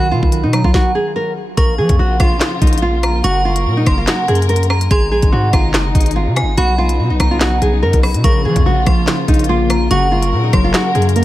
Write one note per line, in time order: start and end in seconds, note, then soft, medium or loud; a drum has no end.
0.00 0.13 B1 loud
0.00 0.10 D#3 loud
0.00 0.50 B5 loud
0.11 0.22 B2 loud
0.11 0.31 D#3 medium
0.11 0.41 F4 medium
0.23 0.45 B1 loud
0.23 kick loud
0.32 1.36 D#3 medium
0.32 closed hi-hat medium
0.43 0.63 B2 loud
0.43 0.60 D#4 medium
0.53 1.57 F#3 medium
0.53 0.73 A#5 medium
0.53 cross-stick loud
0.53 closed hi-hat medium
0.64 0.74 B1 loud
0.64 0.72 F4 medium
0.64 kick medium
0.74 0.90 F#4 medium
0.74 kick loud
0.74 snare medium
0.95 1.11 G#4 medium
1.16 1.32 A#4 medium
1.57 1.80 A#1 loud
1.57 3.22 C#3 medium
1.57 3.22 F3 medium
1.57 4.87 A#3 medium
1.57 3.22 F4 medium
1.57 1.74 A#4 loud
1.57 2.16 C#6 loud
1.57 kick loud
1.57 closed hi-hat medium
1.78 1.89 F3 loud
1.78 1.94 G#4 medium
1.89 1.99 F2 loud
1.89 kick loud
1.89 closed hi-hat medium
1.99 2.19 A#1 loud
1.99 2.15 F#4 medium
2.20 2.40 A#1 loud
2.20 2.36 F4 medium
2.20 2.99 C6 medium
2.20 kick medium
2.20 cross-stick loud
2.20 closed hi-hat medium
2.40 snare loud
2.40 clap loud
2.40 closed hi-hat medium
2.62 3.22 A#1 loud
2.62 2.78 D#4 medium
2.62 kick loud
2.62 closed hi-hat medium
2.67 closed hi-hat medium
2.73 closed hi-hat medium
2.78 closed hi-hat medium
2.82 3.22 F4 loud
3.03 3.23 A#5 medium
3.03 cross-stick loud
3.03 closed hi-hat medium
3.24 3.67 F#1 loud
3.24 4.89 C#3 medium
3.24 4.89 F#3 medium
3.24 3.40 F#4 loud
3.24 4.89 A#4 medium
3.24 3.83 C#6 loud
3.24 closed hi-hat medium
3.45 3.75 F4 medium
3.56 closed hi-hat medium
3.66 3.86 A#2 loud
3.77 3.93 D#4 medium
3.86 4.07 F#1 loud
3.86 4.66 C6 medium
3.86 kick medium
3.86 cross-stick loud
3.86 closed hi-hat medium
3.98 4.05 F4 medium
4.07 4.24 F#4 loud
4.07 snare loud
4.07 clap loud
4.07 closed hi-hat medium
4.28 4.88 F#2 loud
4.28 4.44 G#4 medium
4.28 closed hi-hat medium
4.35 closed hi-hat medium
4.42 closed hi-hat medium
4.49 4.65 A#4 medium
4.49 closed hi-hat medium
4.56 closed hi-hat medium
4.63 closed hi-hat medium
4.70 4.90 A#5 medium
4.70 cross-stick loud
4.81 closed hi-hat medium
4.91 5.13 G#1 loud
4.91 6.56 C3 medium
4.91 6.56 D#3 medium
4.91 6.56 G#3 medium
4.91 6.56 D#4 medium
4.91 5.07 G#4 loud
4.91 5.50 C6 loud
4.91 kick loud
4.91 closed hi-hat medium
5.12 5.22 A#1 loud
5.12 5.28 G#4 medium
5.22 5.32 G#1 loud
5.22 kick loud
5.22 closed hi-hat medium
5.32 5.52 G#2 loud
5.32 5.49 F#4 medium
5.53 5.76 G#1 loud
5.53 5.69 F4 medium
5.53 6.33 A#5 medium
5.53 kick loud
5.53 cross-stick loud
5.53 closed hi-hat medium
5.74 5.94 F#1 loud
5.74 snare loud
5.74 clap loud
5.74 closed hi-hat medium
5.95 6.28 G#1 loud
5.95 6.11 D#4 medium
5.95 kick loud
5.95 closed hi-hat medium
6.01 closed hi-hat medium
6.06 closed hi-hat medium
6.11 closed hi-hat medium
6.16 6.55 F4 medium
6.27 6.44 C3 loud
6.36 6.56 G#5 medium
6.36 cross-stick loud
6.36 closed hi-hat medium
6.42 6.57 G#1 loud
6.57 7.01 B1 loud
6.57 11.25 C#3 medium
6.57 8.22 F#3 medium
6.57 8.22 B3 medium
6.57 8.22 D#4 medium
6.57 6.74 F#4 loud
6.57 7.16 B5 loud
6.57 closed hi-hat medium
6.78 7.08 F4 loud
6.89 closed hi-hat medium
6.99 7.12 B2 loud
7.10 7.20 B1 loud
7.10 7.26 D#4 medium
7.20 7.60 B1 loud
7.20 7.40 A#5 medium
7.20 kick medium
7.20 cross-stick loud
7.20 closed hi-hat medium
7.31 7.39 F4 medium
7.40 7.57 F#4 medium
7.40 snare loud
7.40 clap loud
7.40 closed hi-hat medium
7.62 7.84 B1 loud
7.62 7.78 G#4 medium
7.62 closed hi-hat medium
7.83 7.93 F#2 loud
7.83 7.99 A#4 medium
7.93 8.16 B1 loud
7.93 kick medium
7.93 closed hi-hat medium
8.03 8.23 B5 medium
8.03 cross-stick medium
8.03 open hi-hat medium
8.14 8.24 B2 loud
8.14 closed hi-hat medium
8.24 8.47 A#1 loud
8.24 8.44 C#3 loud
8.24 9.89 F3 medium
8.24 11.25 A#3 medium
8.24 9.89 F4 medium
8.24 8.40 A#4 loud
8.24 8.83 C#6 loud
8.24 kick loud
8.24 closed hi-hat medium
8.45 8.64 C#3 medium
8.45 8.56 F3 loud
8.45 8.61 G#4 medium
8.56 8.65 F2 loud
8.56 kick loud
8.56 closed hi-hat medium
8.65 8.86 A#1 loud
8.65 9.07 C#3 medium
8.65 8.82 F#4 medium
8.86 9.07 A#1 loud
8.86 9.91 F3 medium
8.86 9.03 F4 medium
8.86 9.66 C6 medium
8.86 kick medium
8.86 cross-stick medium
8.86 closed hi-hat medium
9.07 9.27 C#3 medium
9.07 snare loud
9.07 clap loud
9.07 closed hi-hat medium
9.28 9.88 A#1 loud
9.28 9.90 C#3 medium
9.28 9.45 D#4 medium
9.28 kick loud
9.28 closed hi-hat medium
9.34 closed hi-hat medium
9.39 closed hi-hat medium
9.44 closed hi-hat medium
9.49 9.91 A#3 medium
9.49 9.88 F4 medium
9.70 9.90 A#5 medium
9.70 cross-stick loud
9.70 closed hi-hat medium
9.91 10.34 F#1 loud
9.91 10.10 C#3 loud
9.91 11.25 F#3 medium
9.91 10.07 F#4 loud
9.91 11.25 A#4 medium
9.91 10.49 C#6 loud
9.91 closed hi-hat medium
10.12 10.31 C#3 medium
10.12 10.42 F4 medium
10.22 closed hi-hat medium
10.32 10.52 A#2 loud
10.32 10.74 C#3 medium
10.44 10.60 D#4 medium
10.53 10.73 F#1 loud
10.53 11.25 F#3 medium
10.53 11.25 C6 medium
10.53 kick medium
10.53 cross-stick loud
10.53 closed hi-hat medium
10.64 10.72 F4 medium
10.74 10.94 C#3 medium
10.74 10.90 F#4 medium
10.74 snare loud
10.74 clap loud
10.74 closed hi-hat medium
10.95 11.25 F#2 loud
10.95 11.25 C#3 medium
10.95 11.11 G#4 medium
10.95 closed hi-hat medium
11.02 closed hi-hat medium
11.09 closed hi-hat medium
11.16 11.25 A#3 medium
11.16 11.25 A#4 medium
11.16 closed hi-hat medium